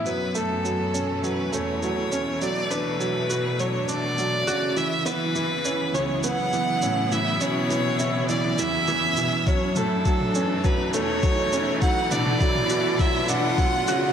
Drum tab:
SH |x-x-x-x-x-x-x-x-|x-x-x-x-x-x-x-x-|x-x-x-x-x-x-x-x-|x-x-x-x-x-x-x-x-|
T2 |----------------|----------------|----------------|----------------|
BD |----------------|----------------|----------------|----------------|

SH |x-x-x-x-x-x-x-x-|x-x-x-x-x-x-x-x-|
T2 |--o--o----------|--oo-o----------|
BD |o---o---o---o---|o---o---o---o---|